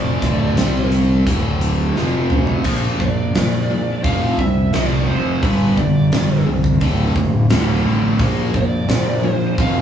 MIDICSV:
0, 0, Header, 1, 5, 480
1, 0, Start_track
1, 0, Tempo, 693642
1, 1842, Time_signature, 4, 2, 24, 8
1, 6792, End_track
2, 0, Start_track
2, 0, Title_t, "Lead electric guitar"
2, 0, Program_c, 0, 29
2, 0, Note_on_c, 0, 74, 81
2, 603, Note_off_c, 0, 74, 0
2, 2083, Note_on_c, 0, 74, 91
2, 2791, Note_off_c, 0, 74, 0
2, 2793, Note_on_c, 0, 77, 99
2, 3030, Note_off_c, 0, 77, 0
2, 3033, Note_on_c, 0, 76, 92
2, 3275, Note_off_c, 0, 76, 0
2, 3278, Note_on_c, 0, 74, 87
2, 3503, Note_off_c, 0, 74, 0
2, 3515, Note_on_c, 0, 72, 80
2, 3756, Note_off_c, 0, 72, 0
2, 3759, Note_on_c, 0, 71, 90
2, 4005, Note_on_c, 0, 74, 79
2, 4008, Note_off_c, 0, 71, 0
2, 4455, Note_off_c, 0, 74, 0
2, 5926, Note_on_c, 0, 74, 93
2, 6438, Note_off_c, 0, 74, 0
2, 6438, Note_on_c, 0, 72, 93
2, 6646, Note_off_c, 0, 72, 0
2, 6649, Note_on_c, 0, 77, 106
2, 6792, Note_off_c, 0, 77, 0
2, 6792, End_track
3, 0, Start_track
3, 0, Title_t, "Distorted electric guitar"
3, 0, Program_c, 1, 30
3, 0, Note_on_c, 1, 41, 89
3, 0, Note_on_c, 1, 48, 93
3, 0, Note_on_c, 1, 53, 92
3, 150, Note_off_c, 1, 41, 0
3, 151, Note_off_c, 1, 48, 0
3, 152, Note_off_c, 1, 53, 0
3, 156, Note_on_c, 1, 38, 83
3, 161, Note_on_c, 1, 45, 90
3, 162, Note_on_c, 1, 50, 91
3, 388, Note_off_c, 1, 38, 0
3, 391, Note_on_c, 1, 48, 80
3, 393, Note_off_c, 1, 45, 0
3, 393, Note_off_c, 1, 50, 0
3, 396, Note_on_c, 1, 55, 88
3, 398, Note_on_c, 1, 60, 100
3, 869, Note_off_c, 1, 48, 0
3, 871, Note_off_c, 1, 55, 0
3, 871, Note_on_c, 1, 38, 94
3, 873, Note_off_c, 1, 60, 0
3, 874, Note_on_c, 1, 45, 90
3, 879, Note_on_c, 1, 50, 91
3, 1349, Note_off_c, 1, 38, 0
3, 1351, Note_off_c, 1, 45, 0
3, 1352, Note_on_c, 1, 41, 87
3, 1353, Note_off_c, 1, 50, 0
3, 1357, Note_on_c, 1, 48, 89
3, 1360, Note_on_c, 1, 53, 91
3, 1830, Note_off_c, 1, 41, 0
3, 1830, Note_off_c, 1, 53, 0
3, 1832, Note_off_c, 1, 48, 0
3, 1835, Note_on_c, 1, 46, 93
3, 1839, Note_on_c, 1, 53, 89
3, 1842, Note_on_c, 1, 58, 99
3, 2064, Note_off_c, 1, 46, 0
3, 2066, Note_off_c, 1, 53, 0
3, 2068, Note_off_c, 1, 58, 0
3, 2078, Note_on_c, 1, 46, 59
3, 2083, Note_on_c, 1, 53, 73
3, 2296, Note_off_c, 1, 46, 0
3, 2299, Note_off_c, 1, 53, 0
3, 2322, Note_on_c, 1, 46, 67
3, 2324, Note_on_c, 1, 53, 79
3, 2539, Note_off_c, 1, 46, 0
3, 2539, Note_off_c, 1, 53, 0
3, 2560, Note_on_c, 1, 46, 69
3, 2562, Note_on_c, 1, 53, 67
3, 2778, Note_off_c, 1, 46, 0
3, 2778, Note_off_c, 1, 53, 0
3, 2795, Note_on_c, 1, 41, 90
3, 2799, Note_on_c, 1, 48, 85
3, 2801, Note_on_c, 1, 53, 98
3, 3024, Note_off_c, 1, 41, 0
3, 3027, Note_off_c, 1, 48, 0
3, 3028, Note_off_c, 1, 53, 0
3, 3038, Note_on_c, 1, 41, 72
3, 3042, Note_on_c, 1, 48, 76
3, 3256, Note_off_c, 1, 41, 0
3, 3258, Note_off_c, 1, 48, 0
3, 3275, Note_on_c, 1, 41, 87
3, 3279, Note_on_c, 1, 48, 90
3, 3284, Note_on_c, 1, 53, 99
3, 3504, Note_off_c, 1, 41, 0
3, 3506, Note_off_c, 1, 48, 0
3, 3509, Note_off_c, 1, 53, 0
3, 3516, Note_on_c, 1, 41, 93
3, 3520, Note_on_c, 1, 48, 91
3, 3524, Note_on_c, 1, 53, 98
3, 3745, Note_off_c, 1, 41, 0
3, 3747, Note_off_c, 1, 48, 0
3, 3749, Note_off_c, 1, 53, 0
3, 3754, Note_on_c, 1, 43, 86
3, 3757, Note_on_c, 1, 50, 94
3, 3759, Note_on_c, 1, 55, 96
3, 3983, Note_off_c, 1, 43, 0
3, 3985, Note_off_c, 1, 50, 0
3, 3986, Note_off_c, 1, 55, 0
3, 3995, Note_on_c, 1, 43, 61
3, 3997, Note_on_c, 1, 50, 73
3, 4214, Note_off_c, 1, 43, 0
3, 4215, Note_off_c, 1, 50, 0
3, 4235, Note_on_c, 1, 43, 64
3, 4240, Note_on_c, 1, 50, 76
3, 4454, Note_off_c, 1, 43, 0
3, 4457, Note_off_c, 1, 50, 0
3, 4474, Note_on_c, 1, 43, 67
3, 4478, Note_on_c, 1, 50, 69
3, 4693, Note_off_c, 1, 43, 0
3, 4696, Note_off_c, 1, 50, 0
3, 4712, Note_on_c, 1, 38, 82
3, 4715, Note_on_c, 1, 45, 98
3, 4719, Note_on_c, 1, 50, 103
3, 4942, Note_off_c, 1, 38, 0
3, 4943, Note_off_c, 1, 45, 0
3, 4945, Note_off_c, 1, 50, 0
3, 4954, Note_on_c, 1, 38, 68
3, 4956, Note_on_c, 1, 45, 75
3, 5173, Note_off_c, 1, 38, 0
3, 5174, Note_off_c, 1, 45, 0
3, 5192, Note_on_c, 1, 38, 81
3, 5195, Note_on_c, 1, 45, 85
3, 5199, Note_on_c, 1, 50, 106
3, 5421, Note_off_c, 1, 38, 0
3, 5423, Note_off_c, 1, 45, 0
3, 5425, Note_off_c, 1, 50, 0
3, 5430, Note_on_c, 1, 38, 84
3, 5433, Note_on_c, 1, 45, 101
3, 5433, Note_on_c, 1, 50, 96
3, 5660, Note_off_c, 1, 38, 0
3, 5661, Note_off_c, 1, 45, 0
3, 5661, Note_off_c, 1, 50, 0
3, 5669, Note_on_c, 1, 46, 92
3, 5673, Note_on_c, 1, 53, 100
3, 5673, Note_on_c, 1, 58, 99
3, 5899, Note_off_c, 1, 46, 0
3, 5901, Note_off_c, 1, 53, 0
3, 5901, Note_off_c, 1, 58, 0
3, 5910, Note_on_c, 1, 46, 64
3, 5914, Note_on_c, 1, 53, 70
3, 6129, Note_off_c, 1, 46, 0
3, 6132, Note_off_c, 1, 53, 0
3, 6147, Note_on_c, 1, 46, 71
3, 6150, Note_on_c, 1, 53, 74
3, 6368, Note_off_c, 1, 46, 0
3, 6369, Note_off_c, 1, 53, 0
3, 6388, Note_on_c, 1, 46, 65
3, 6389, Note_on_c, 1, 53, 73
3, 6608, Note_off_c, 1, 46, 0
3, 6608, Note_off_c, 1, 53, 0
3, 6630, Note_on_c, 1, 41, 89
3, 6633, Note_on_c, 1, 48, 95
3, 6636, Note_on_c, 1, 53, 105
3, 6792, Note_off_c, 1, 41, 0
3, 6792, Note_off_c, 1, 48, 0
3, 6792, Note_off_c, 1, 53, 0
3, 6792, End_track
4, 0, Start_track
4, 0, Title_t, "Fingered electric bass"
4, 0, Program_c, 2, 33
4, 0, Note_on_c, 2, 29, 83
4, 139, Note_off_c, 2, 29, 0
4, 157, Note_on_c, 2, 26, 82
4, 381, Note_off_c, 2, 26, 0
4, 408, Note_on_c, 2, 36, 97
4, 857, Note_off_c, 2, 36, 0
4, 878, Note_on_c, 2, 26, 95
4, 1332, Note_off_c, 2, 26, 0
4, 1360, Note_on_c, 2, 29, 80
4, 1814, Note_off_c, 2, 29, 0
4, 1837, Note_on_c, 2, 34, 92
4, 2070, Note_off_c, 2, 34, 0
4, 2078, Note_on_c, 2, 34, 80
4, 2311, Note_off_c, 2, 34, 0
4, 2325, Note_on_c, 2, 34, 94
4, 2796, Note_on_c, 2, 29, 93
4, 2806, Note_off_c, 2, 34, 0
4, 3029, Note_off_c, 2, 29, 0
4, 3037, Note_on_c, 2, 36, 74
4, 3270, Note_off_c, 2, 36, 0
4, 3284, Note_on_c, 2, 36, 88
4, 3513, Note_off_c, 2, 36, 0
4, 3521, Note_on_c, 2, 29, 83
4, 3752, Note_off_c, 2, 29, 0
4, 3757, Note_on_c, 2, 31, 89
4, 3990, Note_off_c, 2, 31, 0
4, 3997, Note_on_c, 2, 31, 84
4, 4229, Note_off_c, 2, 31, 0
4, 4233, Note_on_c, 2, 31, 94
4, 4467, Note_off_c, 2, 31, 0
4, 4476, Note_on_c, 2, 36, 91
4, 4709, Note_off_c, 2, 36, 0
4, 4717, Note_on_c, 2, 26, 89
4, 4948, Note_off_c, 2, 26, 0
4, 4954, Note_on_c, 2, 30, 78
4, 5187, Note_off_c, 2, 30, 0
4, 5193, Note_on_c, 2, 26, 85
4, 5426, Note_off_c, 2, 26, 0
4, 5438, Note_on_c, 2, 33, 94
4, 5667, Note_off_c, 2, 33, 0
4, 5671, Note_on_c, 2, 34, 88
4, 5904, Note_off_c, 2, 34, 0
4, 5911, Note_on_c, 2, 34, 88
4, 6142, Note_off_c, 2, 34, 0
4, 6146, Note_on_c, 2, 34, 97
4, 6611, Note_off_c, 2, 34, 0
4, 6630, Note_on_c, 2, 29, 92
4, 6792, Note_off_c, 2, 29, 0
4, 6792, End_track
5, 0, Start_track
5, 0, Title_t, "Drums"
5, 153, Note_on_c, 9, 42, 64
5, 154, Note_on_c, 9, 36, 94
5, 222, Note_off_c, 9, 42, 0
5, 223, Note_off_c, 9, 36, 0
5, 395, Note_on_c, 9, 42, 83
5, 401, Note_on_c, 9, 38, 109
5, 464, Note_off_c, 9, 42, 0
5, 470, Note_off_c, 9, 38, 0
5, 523, Note_on_c, 9, 38, 31
5, 592, Note_off_c, 9, 38, 0
5, 636, Note_on_c, 9, 42, 57
5, 705, Note_off_c, 9, 42, 0
5, 876, Note_on_c, 9, 36, 94
5, 878, Note_on_c, 9, 42, 79
5, 945, Note_off_c, 9, 36, 0
5, 947, Note_off_c, 9, 42, 0
5, 1116, Note_on_c, 9, 42, 63
5, 1185, Note_off_c, 9, 42, 0
5, 1356, Note_on_c, 9, 38, 52
5, 1426, Note_off_c, 9, 38, 0
5, 1592, Note_on_c, 9, 45, 78
5, 1661, Note_off_c, 9, 45, 0
5, 1710, Note_on_c, 9, 43, 73
5, 1779, Note_off_c, 9, 43, 0
5, 1828, Note_on_c, 9, 49, 98
5, 1834, Note_on_c, 9, 36, 98
5, 1898, Note_off_c, 9, 49, 0
5, 1903, Note_off_c, 9, 36, 0
5, 2076, Note_on_c, 9, 36, 81
5, 2145, Note_off_c, 9, 36, 0
5, 2316, Note_on_c, 9, 46, 51
5, 2322, Note_on_c, 9, 38, 106
5, 2385, Note_off_c, 9, 46, 0
5, 2391, Note_off_c, 9, 38, 0
5, 2797, Note_on_c, 9, 46, 51
5, 2798, Note_on_c, 9, 36, 105
5, 2866, Note_off_c, 9, 46, 0
5, 2867, Note_off_c, 9, 36, 0
5, 3037, Note_on_c, 9, 36, 79
5, 3106, Note_off_c, 9, 36, 0
5, 3274, Note_on_c, 9, 46, 54
5, 3279, Note_on_c, 9, 38, 111
5, 3343, Note_off_c, 9, 46, 0
5, 3348, Note_off_c, 9, 38, 0
5, 3754, Note_on_c, 9, 46, 57
5, 3756, Note_on_c, 9, 36, 104
5, 3823, Note_off_c, 9, 46, 0
5, 3825, Note_off_c, 9, 36, 0
5, 3996, Note_on_c, 9, 36, 81
5, 4065, Note_off_c, 9, 36, 0
5, 4235, Note_on_c, 9, 46, 57
5, 4240, Note_on_c, 9, 38, 109
5, 4304, Note_off_c, 9, 46, 0
5, 4309, Note_off_c, 9, 38, 0
5, 4596, Note_on_c, 9, 36, 76
5, 4665, Note_off_c, 9, 36, 0
5, 4709, Note_on_c, 9, 46, 54
5, 4715, Note_on_c, 9, 36, 97
5, 4778, Note_off_c, 9, 46, 0
5, 4784, Note_off_c, 9, 36, 0
5, 4953, Note_on_c, 9, 36, 83
5, 5022, Note_off_c, 9, 36, 0
5, 5188, Note_on_c, 9, 46, 58
5, 5193, Note_on_c, 9, 38, 116
5, 5257, Note_off_c, 9, 46, 0
5, 5263, Note_off_c, 9, 38, 0
5, 5669, Note_on_c, 9, 46, 54
5, 5671, Note_on_c, 9, 36, 103
5, 5738, Note_off_c, 9, 46, 0
5, 5740, Note_off_c, 9, 36, 0
5, 5911, Note_on_c, 9, 36, 81
5, 5980, Note_off_c, 9, 36, 0
5, 6150, Note_on_c, 9, 46, 52
5, 6156, Note_on_c, 9, 38, 108
5, 6156, Note_on_c, 9, 39, 91
5, 6220, Note_off_c, 9, 46, 0
5, 6225, Note_off_c, 9, 38, 0
5, 6225, Note_off_c, 9, 39, 0
5, 6398, Note_on_c, 9, 39, 65
5, 6467, Note_off_c, 9, 39, 0
5, 6631, Note_on_c, 9, 36, 106
5, 6631, Note_on_c, 9, 46, 50
5, 6700, Note_off_c, 9, 36, 0
5, 6700, Note_off_c, 9, 46, 0
5, 6792, End_track
0, 0, End_of_file